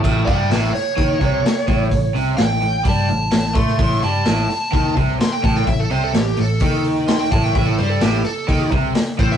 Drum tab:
CC |x---------------|----------------|----------------|----------------|
HH |--o-o-o-o-o-o-o-|o-o-o-o-o-o-o-o-|o-o-o-o-o-o-o-o-|o-o-o-o-o-o-o-o-|
SD |----o-------o---|----o-------o--o|----o-------o--o|----o-------o--o|
BD |o-o-----o-o---o-|o-------o-----o-|o-------o-o---o-|o-------o-----o-|

CC |----------------|
HH |o-o-o-o-o-o-o-o-|
SD |----o-------o--o|
BD |o-------o-o---o-|